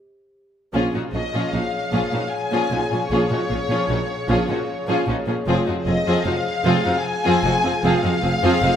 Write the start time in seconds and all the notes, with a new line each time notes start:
0.73 A#1 A#2 F3 C#4 F4 G#4 C#5 F5
0.94 A#2 F3 C#4 D#4 F#4
1.13 A#1 A#2 F3 C#4 F4 G#4 D#5
1.33 A#2 F3 C#4 F4 G#4
1.53 A#1 A#2 F3 C#4 D#4 F#4 F5
1.92 A#1 A#2 F3 C#4 F4 G#4
2.12 A#2 F3 C#4 D#4 F#4
2.31 G#5
2.51 A#2 F3 C#4 F4 G#4
2.70 A#1 A#2 F3 C#4 D#4 F#4
2.90 A#2 F3 C#4 F4 G#4
3.09 A#1 A#2 F4 G#4 C#5
3.13 F3 C#4
3.30 A#2 F3 C#4 D#4 F#4
3.49 A#1 A#2 F3 C#4 F4 G#4
3.68 A#2 F3 C#4 F4 G#4
3.89 A#1 A#2 F3 C#4 D#4 F#4
4.28 A#1 A#2 F3 C#4 F4 G#4
4.48 A#2 F3 C#4 D#4 F#4
4.88 A#2 F3 C#4 F4 G#4
5.07 A#1 A#2 F3 C#4 D#4 F#4
5.27 A#2 F3 C#4 F4 G#4
5.46 F1 F2 F3 C4 F4 G#4 C5 F5
5.66 F2 F3 C4 D#4 F#4
5.86 F1 F2 F3 C4 F4 G#4 D#5
6.05 F2 F3 C4 F4 G#4
6.24 F1 F2 F3 C4 D#4 F#4 F5
6.64 F1 F2 F3 C4 F4 G#4
6.85 F2 F3 C4 D#4 F#4
7.02 G#5
7.25 F2 F3 C4 F4 G#4
7.44 F1 F2 F3 C4 D#4 F#4
7.63 F2 F3 C4 F4 G#4
7.83 F1 F2 F3 C4 F4 G#4 F5
8.03 F2 F3 C4 D#4 F#4
8.22 F1 F2 F3 C4 F4 G#4
8.42 F2 F3 C4 F4 G#4
8.62 F1 F2 F3 C4 D#4 F#4